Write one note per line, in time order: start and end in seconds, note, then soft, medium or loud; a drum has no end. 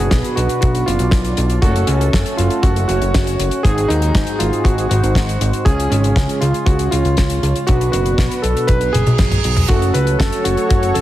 0.00 0.84 B2 loud
0.00 0.84 B3 medium
0.00 0.84 D4 medium
0.00 0.84 F#4 medium
0.00 0.37 G#4 medium
0.00 0.84 B4 loud
0.11 0.22 B1 medium
0.11 kick loud
0.11 snare loud
0.11 closed hi-hat medium
0.24 closed hi-hat soft
0.36 0.48 B1 medium
0.36 0.59 F#4 medium
0.36 closed hi-hat medium
0.49 closed hi-hat medium
0.61 0.84 B1 medium
0.61 0.87 F#4 loud
0.61 kick loud
0.61 closed hi-hat medium
0.75 closed hi-hat medium
0.86 0.98 F#1 medium
0.86 1.60 B2 medium
0.86 1.60 F#3 medium
0.86 1.60 B3 medium
0.86 1.60 D4 medium
0.86 1.65 F4 medium
0.86 1.60 D5 medium
0.86 closed hi-hat medium
0.99 1.11 B1 medium
0.99 closed hi-hat medium
1.11 1.34 B1 loud
1.11 kick loud
1.11 snare loud
1.11 closed hi-hat medium
1.25 closed hi-hat medium
1.37 1.59 B1 medium
1.37 closed hi-hat medium
1.50 closed hi-hat soft
1.62 1.84 F#1 loud
1.62 2.86 A3 loud
1.62 2.86 C#4 medium
1.62 1.86 F#4 medium
1.62 2.86 F#4 medium
1.62 2.86 A4 loud
1.62 kick loud
1.62 closed hi-hat medium
1.76 closed hi-hat medium
1.87 2.10 C#2 loud
1.87 2.39 C#4 medium
1.87 closed hi-hat medium
2.01 closed hi-hat medium
2.13 2.24 F#1 medium
2.13 kick loud
2.13 snare loud
2.13 closed hi-hat medium
2.26 closed hi-hat medium
2.37 2.49 F#1 medium
2.37 2.64 F4 medium
2.37 closed hi-hat medium
2.50 closed hi-hat soft
2.63 2.85 F#1 medium
2.63 2.86 F#4 loud
2.63 kick loud
2.63 closed hi-hat medium
2.76 closed hi-hat soft
2.88 3.00 F#1 medium
2.88 3.61 A3 medium
2.88 3.61 C#4 medium
2.88 3.60 F#4 loud
2.88 3.61 F#4 medium
2.88 3.61 C#5 medium
2.88 closed hi-hat medium
3.01 3.12 F#1 medium
3.01 closed hi-hat soft
3.14 3.36 F#1 medium
3.14 kick loud
3.14 snare loud
3.14 closed hi-hat medium
3.27 closed hi-hat medium
3.39 3.50 F#1 medium
3.39 closed hi-hat medium
3.51 closed hi-hat medium
3.63 3.86 G#1 loud
3.63 4.87 G#2 loud
3.63 4.87 C4 medium
3.63 4.87 D#4 medium
3.63 4.87 F#4 medium
3.63 3.90 G#4 loud
3.63 4.88 G#4 loud
3.63 kick loud
3.63 closed hi-hat medium
3.78 closed hi-hat medium
3.88 4.12 D#2 loud
3.88 4.41 D#4 loud
3.88 closed hi-hat medium
4.02 closed hi-hat medium
4.15 4.26 G#1 medium
4.15 kick loud
4.15 snare loud
4.15 closed hi-hat medium
4.27 closed hi-hat medium
4.39 4.51 G#1 medium
4.39 4.65 F4 medium
4.39 closed hi-hat loud
4.53 closed hi-hat soft
4.64 4.87 G#1 medium
4.64 4.88 F#4 medium
4.64 kick loud
4.64 closed hi-hat medium
4.78 closed hi-hat medium
4.89 5.02 G#1 medium
4.89 5.63 G#2 medium
4.89 5.63 C4 medium
4.89 5.63 D#4 medium
4.89 5.68 F#4 medium
4.89 5.63 F#4 medium
4.89 5.63 C5 medium
4.89 closed hi-hat loud
5.03 5.14 G#1 medium
5.03 closed hi-hat medium
5.15 5.37 G#1 medium
5.15 kick medium
5.15 snare loud
5.15 closed hi-hat medium
5.29 closed hi-hat medium
5.41 5.52 G#1 medium
5.41 closed hi-hat loud
5.53 closed hi-hat medium
5.65 5.88 C#2 loud
5.65 6.89 C#3 medium
5.65 6.89 G#3 medium
5.65 6.89 C#4 medium
5.65 6.89 F4 medium
5.65 5.89 G#4 loud
5.65 6.89 G#4 loud
5.65 kick loud
5.65 closed hi-hat medium
5.80 closed hi-hat medium
5.90 6.13 G#1 loud
5.90 6.43 C#4 medium
5.90 closed hi-hat medium
6.04 closed hi-hat medium
6.16 6.27 C#2 medium
6.16 kick loud
6.16 snare loud
6.16 closed hi-hat medium
6.29 closed hi-hat medium
6.41 6.53 C#2 medium
6.41 6.67 F4 medium
6.41 closed hi-hat medium
6.54 closed hi-hat soft
6.66 6.89 C#2 medium
6.66 6.90 F#4 loud
6.66 kick loud
6.66 closed hi-hat medium
6.79 closed hi-hat medium
6.91 7.03 C#2 medium
6.91 7.65 C#3 medium
6.91 7.65 G#3 medium
6.91 7.65 C#4 medium
6.91 7.63 F4 medium
6.91 7.65 F4 medium
6.91 7.65 C#5 medium
6.91 closed hi-hat loud
7.05 7.16 C#2 medium
7.05 closed hi-hat soft
7.17 7.40 C#2 medium
7.17 kick medium
7.17 snare loud
7.17 closed hi-hat medium
7.30 closed hi-hat medium
7.43 7.54 C#2 medium
7.43 closed hi-hat medium
7.56 closed hi-hat medium
7.67 7.90 B1 loud
7.67 8.91 B2 loud
7.67 8.91 B3 medium
7.67 8.91 D4 medium
7.67 7.90 F#4 loud
7.67 8.91 F#4 medium
7.67 8.91 B4 loud
7.67 kick loud
7.67 closed hi-hat medium
7.81 closed hi-hat medium
7.92 8.15 F#1 loud
7.92 8.44 F#4 medium
7.92 closed hi-hat loud
8.06 closed hi-hat soft
8.18 8.29 B1 medium
8.18 kick medium
8.18 snare loud
8.18 closed hi-hat medium
8.31 closed hi-hat medium
8.42 8.54 B1 medium
8.42 8.66 A4 medium
8.42 closed hi-hat medium
8.57 closed hi-hat soft
8.67 8.91 B1 medium
8.67 8.94 B4 loud
8.67 kick loud
8.67 closed hi-hat medium
8.67 reverse cymbal medium
8.81 closed hi-hat soft
8.93 9.05 F#1 medium
8.93 9.65 G#4 loud
8.93 closed hi-hat loud
8.93 high tom medium
9.07 9.18 B1 medium
9.07 closed hi-hat medium
9.07 high tom medium
9.18 9.41 B1 medium
9.18 kick loud
9.18 snare loud
9.18 closed hi-hat medium
9.18 mid tom medium
9.31 closed hi-hat medium
9.31 mid tom medium
9.44 9.66 B1 medium
9.44 closed hi-hat loud
9.56 closed hi-hat medium
9.56 mid tom medium
9.68 9.91 F#1 loud
9.68 11.01 F#3 medium
9.68 10.93 A3 loud
9.68 10.93 C#4 medium
9.68 9.92 F#4 loud
9.68 11.01 F#4 medium
9.68 10.93 F#4 medium
9.68 11.01 A4 medium
9.68 10.93 A4 loud
9.68 11.01 C#5 medium
9.68 kick loud
9.68 closed hi-hat medium
9.82 closed hi-hat medium
9.94 10.17 C#2 loud
9.94 10.18 B4 medium
9.94 closed hi-hat medium
10.07 closed hi-hat medium
10.19 10.31 F#1 medium
10.19 10.43 A4 medium
10.19 kick loud
10.19 snare loud
10.19 closed hi-hat medium
10.32 closed hi-hat medium
10.44 10.56 F#1 medium
10.44 10.68 F#4 medium
10.44 closed hi-hat loud
10.57 closed hi-hat medium
10.69 10.92 F#1 medium
10.69 10.96 F#4 loud
10.69 kick loud
10.69 closed hi-hat medium
10.83 closed hi-hat medium
10.94 11.01 F#1 medium
10.94 11.01 A3 medium
10.94 11.01 C#4 medium
10.94 11.01 A4 loud
10.94 11.01 C#5 medium
10.94 closed hi-hat loud